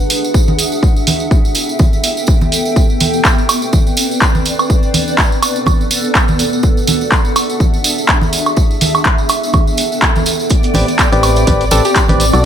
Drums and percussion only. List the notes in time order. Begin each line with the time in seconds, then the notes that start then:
0.00 tambourine
0.10 open hi-hat, tambourine
0.24 tambourine
0.34 kick, tambourine
0.48 tambourine, high conga
0.59 open hi-hat, tambourine
0.72 tambourine
0.83 kick, tambourine
0.96 tambourine
1.07 open hi-hat, tambourine, high conga
1.20 tambourine
1.31 kick, tambourine
1.45 tambourine
1.55 open hi-hat, tambourine
1.69 tambourine
1.79 kick, tambourine, high conga
1.93 tambourine
2.04 open hi-hat, tambourine
2.17 tambourine
2.27 kick, tambourine
2.41 tambourine, high conga
2.52 open hi-hat, tambourine
2.65 tambourine
2.76 kick, tambourine
2.90 tambourine
3.00 open hi-hat, tambourine, high conga
3.13 tambourine
3.25 kick, clap, tambourine
3.38 tambourine
3.49 open hi-hat, tambourine, high woodblock
3.62 tambourine
3.73 kick, tambourine, high conga
3.87 tambourine
3.97 open hi-hat, tambourine
4.11 tambourine
4.21 kick, clap, tambourine
4.35 tambourine, high conga
4.45 open hi-hat, tambourine
4.59 tambourine, high woodblock
4.70 kick, tambourine
4.83 tambourine
4.94 open hi-hat, tambourine, high conga
5.08 tambourine
5.18 kick, clap, tambourine
5.32 tambourine
5.42 open hi-hat, tambourine, high woodblock
5.56 tambourine
5.66 kick, tambourine, high conga, high woodblock
5.81 tambourine
5.91 open hi-hat, tambourine
6.04 tambourine
6.15 kick, clap, tambourine
6.28 tambourine, high conga
6.39 open hi-hat, tambourine
6.53 tambourine
6.63 kick, tambourine
6.77 tambourine
6.87 open hi-hat, tambourine, high conga
7.01 tambourine
7.12 kick, clap, tambourine
7.25 tambourine
7.36 open hi-hat, tambourine, high woodblock
7.50 tambourine
7.60 kick, tambourine, high conga
7.74 tambourine
7.84 open hi-hat, tambourine
7.98 tambourine
8.08 kick, clap, tambourine
8.21 tambourine, high conga
8.33 open hi-hat, tambourine
8.46 tambourine, high woodblock
8.57 kick, tambourine
8.71 tambourine
8.81 open hi-hat, tambourine, high conga
8.95 tambourine, high woodblock
9.05 kick, clap, tambourine
9.18 tambourine
9.29 open hi-hat, tambourine, high woodblock
9.43 tambourine
9.53 kick, tambourine, high conga, high woodblock
9.67 tambourine
9.77 open hi-hat, tambourine
9.92 tambourine
10.02 kick, clap, tambourine
10.16 tambourine, high conga
10.26 open hi-hat, tambourine
10.39 tambourine
10.50 kick, closed hi-hat, tambourine
10.63 closed hi-hat, tambourine
10.74 open hi-hat, tambourine, high conga
10.88 closed hi-hat, tambourine
10.99 kick, clap, closed hi-hat, tambourine
11.12 closed hi-hat, tambourine
11.23 open hi-hat, tambourine, high woodblock
11.36 closed hi-hat, tambourine
11.47 kick, closed hi-hat, tambourine, high conga
11.61 closed hi-hat, tambourine
11.71 open hi-hat, tambourine
11.85 closed hi-hat, tambourine
11.96 kick, clap, closed hi-hat, tambourine
12.08 closed hi-hat, tambourine, high conga
12.20 open hi-hat, tambourine
12.33 closed hi-hat, tambourine, high woodblock